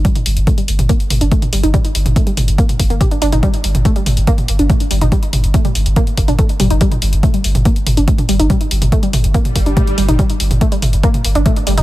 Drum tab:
HH |xxoxxxoxxxoxxxox|xxoxxxoxxxoxxxox|xxoxxxoxxxoxxxox|xxoxxxoxxxoxxxox|
T2 |-o--o--o--o--o--|o--o--o--o--o--o|o--o--o--o--o--o|--o--o--o--o--o-|
BD |o---o---o---o---|o---o---o-o-o---|o---o---o---o---|o---o---o-o-o---|

HH |xxoxxxoxxxoxxxox|xxoxxxoxxxoxxxox|xxoxxxoxxxoxxxox|
T2 |-o--o--o--o--o--|o--o--o--o--o--o|o--o--o--o--o--o|
BD |o---o---o---o---|o---o---o-o-o---|o---o---o---o---|